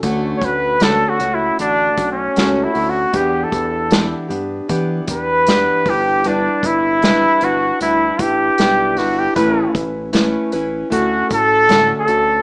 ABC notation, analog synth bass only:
X:1
M:4/4
L:1/8
Q:"Swing 16ths" 1/4=77
K:D
V:1 name="Analog synth bass" clef=bass
D,, D,,2 C,, A,,, B,,, C,, D,, | E,, E,,2 G,, E, E,,2 G,,,- | G,,, G,,,2 G,,, D,, A,,, B,,, G,,, | A,,, A,,,2 A,,, D,, A,,2 D,, |]